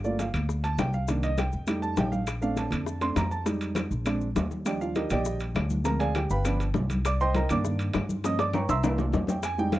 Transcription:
Already playing: upright bass G1
0.04 grand piano A3 A#3 F4 D5, high bongo, high conga, maracas
0.19 grand piano F5, high bongo, high conga, high timbale, low timbale, maracas
0.34 upright bass D2, high bongo, high conga, low conga, high timbale, claves, maracas
0.49 high bongo, high conga, maracas
0.64 grand piano A5, high bongo, high conga, high timbale, maracas
0.78 upright bass C2, grand piano G5, high bongo, low bongo, high conga, high timbale, low timbale, claves, maracas
0.93 grand piano F5, high conga, maracas
1.08 grand piano D#3 A#3 D4, high bongo, high timbale, maracas
1.23 grand piano D#5, high conga, high timbale, maracas
1.38 grand piano G5, high bongo, high conga, high timbale, low timbale, claves, maracas
1.52 upright bass F2, high bongo, maracas
1.67 grand piano G3 A3 D#4, high bongo, high conga, high timbale, claves, maracas
1.82 grand piano A5, high bongo, high conga, maracas
1.97 upright bass A#1, grand piano G5, high bongo, low bongo, high conga, high timbale, low timbale, maracas
2.12 grand piano F5, high bongo, high conga, maracas
2.27 high bongo, high conga, high timbale, claves, maracas
2.41 grand piano A3 C4 D4 F5, high bongo, high conga, maracas
2.56 grand piano A5, high bongo, high conga, high timbale, low timbale, maracas
2.71 upright bass F2, high bongo, high conga, low conga, high timbale, claves, maracas
2.86 high bongo, high conga, maracas
3.01 grand piano A3 C4 D4 C6, high bongo, high conga, high timbale, maracas
3.16 upright bass F2, grand piano A#5, high bongo, low bongo, high conga, high timbale, low timbale, claves, maracas
3.31 grand piano A5, high conga, maracas
3.46 grand piano G3 G#3 D#4, high bongo, high conga, high timbale, maracas
3.61 high conga, high timbale, maracas
3.75 high bongo, high conga, high timbale, low timbale, claves, maracas
3.91 upright bass A#1, high bongo, high conga, maracas
4.05 grand piano G#3 C4 D4, high bongo, high timbale, claves, maracas
4.21 high bongo, high conga, maracas
4.35 upright bass D#2, high bongo, low bongo, high conga, high timbale, low timbale, maracas
4.51 high bongo, high conga, maracas
4.65 grand piano F3 G3 D4 G4 D5 D#5 G5, high bongo, high conga, high timbale, claves, maracas
4.81 grand piano F4 F5, high conga, maracas
4.95 grand piano D#4 G4 A#4 D#5, high bongo, high conga, high timbale, maracas
5.10 upright bass A#1, grand piano G4 D5 D#5 G5, high conga, low conga, high timbale, claves, maracas
5.25 high bongo, high conga, maracas
5.40 high conga, high timbale, maracas
5.55 upright bass D2, high bongo, low bongo, high conga, high timbale, low timbale, claves, maracas
5.70 high conga, maracas
5.84 grand piano F3 G#3 C4 A#4 A#5, high bongo, high conga, high timbale, maracas
6.00 grand piano G#4 D5 F5 G#5, high bongo, high conga, high timbale, maracas
6.15 grand piano G4 G5, high bongo, high conga, high timbale, claves, maracas
6.30 upright bass G1, grand piano B4 F5 G5 B5, high conga, maracas
6.45 grand piano F3 B3 D4, high bongo, high conga, high timbale, claves, maracas
6.60 high bongo, high conga, high timbale, maracas
6.74 upright bass C2, high bongo, low bongo, high conga, low timbale, maracas
6.89 high bongo, high conga, high timbale, maracas
7.05 grand piano D5 D6, high bongo, high timbale, claves, maracas
7.20 grand piano C5 D#5 G5 C6, high conga, maracas
7.34 grand piano A#4 D#5 G5 A#5, high bongo, high conga, high timbale, maracas
7.49 upright bass G2, grand piano D#3 A#3 D4 D5 D6, high conga, low conga, high timbale, claves, maracas
7.65 high bongo, high conga, low conga, maracas
7.79 high conga, high timbale, maracas
7.93 upright bass G2, high bongo, low bongo, high conga, high timbale, low timbale, claves, maracas
8.09 high conga, maracas
8.23 grand piano F3 A#3 C#4 D#5 D#6, high bongo, high conga, high timbale, maracas
8.39 grand piano D5 D6, high bongo, high timbale, maracas
8.53 grand piano C#5 G5 A#5 C#6, low bongo, high conga, high timbale, claves, maracas
8.68 upright bass C2, grand piano E5 A#5 C6 E6, low bongo, high conga, high timbale, maracas
8.84 grand piano E3 A#3 D4, low bongo, high timbale, claves, maracas
8.98 low bongo, high conga, low timbale, maracas
9.12 upright bass F2, low bongo, high conga, low timbale, maracas
9.27 grand piano G5, low bongo, high conga, low timbale, maracas
9.42 grand piano G#5, high bongo, high conga, high timbale, claves, maracas
9.58 grand piano G3 G#3 D#4 G5, high conga, maracas
9.72 grand piano F5, high bongo, high conga, high timbale, maracas

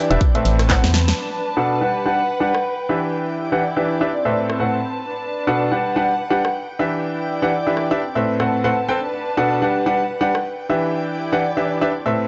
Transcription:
Already playing: string section E4 D5 G5
0.10 fm bass E1, grand piano D4 G4 B4 E5, closed hi-hat
0.20 string section C4, kick, closed hi-hat
0.35 grand piano A2 C4 A4 B4 E5, closed hi-hat
0.45 fm bass A1, open hi-hat
0.59 cross-stick, open hi-hat
0.65 string section B4 A5
0.70 grand piano A2 C4 A4 B4 F#5, kick, snare, clap, closed hi-hat
0.84 fm bass E2, snare, closed hi-hat
0.94 snare, open hi-hat
1.08 snare, closed hi-hat
1.18 string section D4
1.57 grand piano B2 D4 A4 B4 F#5
1.81 grand piano G3 D4 G4 B4 F#5
1.92 string section F#5
2.06 grand piano G3 D4 G4 B4 F#5
2.36 string section G5
2.40 grand piano G3 D4 G4 B4 F#5
2.55 cross-stick
2.89 grand piano E3 D4 G4 B4 E5, string section E4
3.45 string section D5
3.52 grand piano E3 D4 G4 B4 F#5
3.76 grand piano E3 D4 G4 B4 E5
4.01 grand piano D4 G4 B4 E5
4.11 string section C4
4.25 grand piano A2 C4 A4 B4 E5
4.50 cross-stick
4.56 string section B4 A5
4.60 grand piano A2 C4 A4 B4 F#5
5.09 string section D4
5.47 grand piano B2 D4 A4 B4 F#5
5.71 grand piano G3 D4 G4 B4 F#5
5.82 string section F#5
5.96 grand piano G3 D4 G4 B4 F#5
6.26 string section G5
6.30 grand piano G3 D4 G4 B4 F#5
6.45 cross-stick
6.79 grand piano E3 D4 G4 B4 E5, string section E4
6.97 string section D5
7.42 grand piano E3 D4 G4 B4 F#5
7.67 grand piano E3 D4 G4 B4 E5
7.77 cross-stick
7.91 grand piano D4 G4 B4 E5
8.01 string section C4
8.15 grand piano A2 C4 A4 B4 E5, string section B4
8.40 grand piano A2 C4 A4 B4 F#5, cross-stick
8.46 string section A5
8.64 grand piano A2 C4 A4 B4 F#5
8.88 grand piano C4 A4 B4 G5
8.99 string section D4
9.37 grand piano B2 D4 A4 B4 F#5
9.62 grand piano G3 D4 G4 B4 F#5
9.72 string section F#5
9.86 grand piano G3 D4 G4 B4 F#5
10.17 grand piano G3 F#5, string section G5
10.21 grand piano D4 G4 B4
10.35 cross-stick
10.70 grand piano E3 D4 G4 B4 E5, string section E4
10.97 string section D5
11.32 grand piano E3 D4 G4 B4 F#5
11.57 grand piano E3 D4 G4 B4 E5
11.81 grand piano D4 G4 B4 E5
11.91 string section C4
12.04 grand piano A2 C4 A4 B4 E5, string section B4

